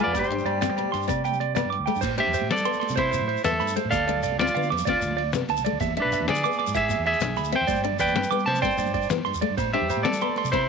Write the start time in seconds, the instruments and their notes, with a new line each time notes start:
Already playing: clean electric guitar G#5
0.00 alto saxophone B3, clean electric guitar F4 D5, low agogo
0.07 fingered electric bass F2, low conga
0.13 fingered electric bass G2, clean electric guitar G4 D5, kick, closed hi-hat, muted conga, high conga, low agogo, shekere
0.19 alto saxophone G3, clean electric guitar C5
0.24 shekere
0.29 fingered electric bass G2, steel-string acoustic guitar D4, closed hi-hat, low conga
0.38 low conga, shekere
0.45 fingered electric bass G2, clean electric guitar D5, closed hi-hat, muted conga, low conga, low agogo
0.55 high conga
0.61 steel-string acoustic guitar C4, clean electric guitar D5, snare, closed hi-hat, shekere
0.69 fingered electric bass G3, low conga
0.76 steel-string acoustic guitar B2, clean electric guitar D5, closed hi-hat, muted conga, low conga, low agogo
0.86 high conga
0.92 fingered electric bass G2, clean electric guitar C6, snare, closed hi-hat, shekere
1.02 shekere
1.08 fingered electric bass C3, steel-string acoustic guitar C4, clean electric guitar D5, kick, closed hi-hat, muted conga, low conga, low agogo, shekere
1.18 low conga
1.24 clean electric guitar G5, closed hi-hat, high conga, low agogo, shekere
1.33 low conga, shekere
1.40 clean electric guitar D5, closed hi-hat, high conga
1.55 steel-string acoustic guitar B3, clean electric guitar D5, snare, closed hi-hat, high conga, low agogo, shekere
1.65 fingered electric bass G2
1.70 clean electric guitar D6, closed hi-hat, low conga
1.79 fingered electric bass D2
1.86 steel-string acoustic guitar A3, clean electric guitar G5, closed hi-hat, low conga, low agogo, shekere
1.95 fingered electric bass G2, shekere
2.01 fingered electric bass A2, clean electric guitar C5, kick, crash, ride, muted conga, high conga, shekere
2.18 steel-string acoustic guitar D4, clean electric guitar G4 C5 E5, ride
2.27 fingered electric bass E2, low conga
2.34 clean electric guitar C5, ride, shekere
2.41 fingered electric bass A2, muted conga, high conga
2.50 fingered electric bass G3, steel-string acoustic guitar C4, clean electric guitar A4 D5, snare, ride
2.57 low conga, shekere
2.65 steel-string acoustic guitar B3, clean electric guitar C6, ride
2.73 high conga, low conga, shekere
2.80 clean electric guitar C6, ride, muted conga
2.89 fingered electric bass C3, low conga, shekere
2.96 steel-string acoustic guitar C4, clean electric guitar E4 C5, kick, ride
3.11 clean electric guitar C5, ride, high conga, shekere
3.21 fingered electric bass A2, muted conga, low conga
3.28 clean electric guitar C5, ride
3.37 shekere
3.44 fingered electric bass E2, steel-string acoustic guitar B3, clean electric guitar A4 E5, snare, ride, shekere
3.52 high conga, low conga
3.60 fingered electric bass G2, clean electric guitar B5, ride, muted conga, shekere
3.68 shekere
3.76 steel-string acoustic guitar A3, clean electric guitar C5, ride, shekere
3.85 fingered electric bass A2, low conga
3.91 fingered electric bass D2, clean electric guitar A4 D5 F5, kick, ride, muted conga, high conga, shekere
4.07 clean electric guitar D5, muted steel-string acoustic guitar stroke, ride
4.16 low conga
4.23 fingered electric bass C2, clean electric guitar D5, ride, shekere
4.32 muted conga, high conga
4.39 fingered electric bass D2, steel-string acoustic guitar C4, clean electric guitar F4 D5, snare, ride
4.47 low conga, shekere
4.55 fingered electric bass D3, steel-string acoustic guitar B3, clean electric guitar F5, ride
4.63 high conga, low conga, shekere
4.70 fingered electric bass F2, clean electric guitar D6, ride, muted conga
4.78 low conga, shekere
4.85 fingered electric bass D2, steel-string acoustic guitar C4, clean electric guitar D5, kick, ride, shekere
4.90 clean electric guitar F4
5.01 fingered electric bass D2, muted clean electric guitar stroke, ride, high conga, shekere
5.11 muted conga, low conga
5.17 clean electric guitar D5, ride
5.33 fingered electric bass C3, steel-string acoustic guitar B3, snare, ride, shekere
5.42 high conga, low conga
5.49 fingered electric bass D2, clean electric guitar A5, ride, muted conga, shekere
5.57 fingered electric bass C2, shekere
5.65 steel-string acoustic guitar A3, clean electric guitar D5, ride, shekere
5.72 fingered electric bass D2, low conga
5.80 fingered electric bass E2, clean electric guitar E5, kick, ride, muted conga, high conga, shekere
5.97 steel-string acoustic guitar D4, clean electric guitar D4 E5, ride
6.02 fingered electric bass B1, clean electric guitar B4, low conga
6.12 clean electric guitar E5, ride, shekere
6.20 fingered electric bass E2, muted conga, high conga
6.28 fingered electric bass D3, steel-string acoustic guitar C4, clean electric guitar G#4 D5, snare, ride
6.35 low conga, shekere
6.43 steel-string acoustic guitar B3, clean electric guitar D6, ride
6.51 high conga, low conga, shekere
6.59 clean electric guitar D6, ride, muted conga
6.67 fingered electric bass G#2, low conga, shekere
6.74 steel-string acoustic guitar E4, clean electric guitar G#4 E5, kick, ride, shekere
6.89 clean electric guitar E5, ride, high conga, shekere
6.96 fingered electric bass E2, muted conga, low conga
7.06 clean electric guitar G#4 E5, ride
7.13 shekere
7.20 fingered electric bass B1, steel-string acoustic guitar D4, snare, ride, shekere
7.30 high conga, low conga
7.36 fingered electric bass D2, clean electric guitar B5, ride, muted conga, shekere
7.44 shekere
7.52 steel-string acoustic guitar C4, clean electric guitar C5 E5 G5, ride, shekere
7.61 fingered electric bass E2
7.67 fingered electric bass G2, clean electric guitar D5, kick, ride, muted conga, high conga, shekere
7.76 shekere
7.84 steel-string acoustic guitar D4, clean electric guitar D5, ride
7.92 low conga
7.99 fingered electric bass E2, clean electric guitar B4 D5 G5, kick, ride, low conga, shekere
8.07 muted conga, high conga, shekere
8.15 fingered electric bass G2, steel-string acoustic guitar C4, snare, ride, low conga
8.23 low conga, shekere
8.31 fingered electric bass G3, steel-string acoustic guitar B3, clean electric guitar D6, ride, low conga
8.39 high conga, shekere
8.46 fingered electric bass C3, clean electric guitar C5 A5, ride, muted conga
8.54 low conga, shekere
8.62 fingered electric bass G2, steel-string acoustic guitar C4, clean electric guitar C5 D5 G5, kick, ride, low conga, shekere
8.70 shekere
8.78 fingered electric bass G2, clean electric guitar D5, ride, high conga, shekere
8.86 muted conga, low conga, shekere
8.94 clean electric guitar D5, kick, ride, shekere
9.02 shekere
9.10 fingered electric bass E3, steel-string acoustic guitar B3, snare, ride, shekere
9.18 high conga, low conga
9.25 fingered electric bass G2, clean electric guitar C6, ride, muted conga, low conga
9.33 fingered electric bass E2, low conga, shekere
9.41 steel-string acoustic guitar A3, clean electric guitar D5, ride
9.49 fingered electric bass G2, low conga
9.57 fingered electric bass A2, clean electric guitar C5, kick, ride, muted conga, high conga, low agogo, shekere
9.73 steel-string acoustic guitar D4, clean electric guitar G4 C5 E5, ride
9.81 fingered electric bass E2, low conga
9.90 clean electric guitar C5, ride, low agogo, shekere
9.97 fingered electric bass A2, muted conga, high conga
10.03 fingered electric bass G3, steel-string acoustic guitar C4, clean electric guitar A4 D5, snare, ride
10.13 low conga, shekere
10.21 steel-string acoustic guitar B3, clean electric guitar C6, ride, low agogo
10.29 high conga, low conga
10.36 clean electric guitar C6, ride, muted conga
10.44 fingered electric bass C3, low conga, shekere
10.52 steel-string acoustic guitar C4, clean electric guitar E4 C5, kick, ride, low agogo, shekere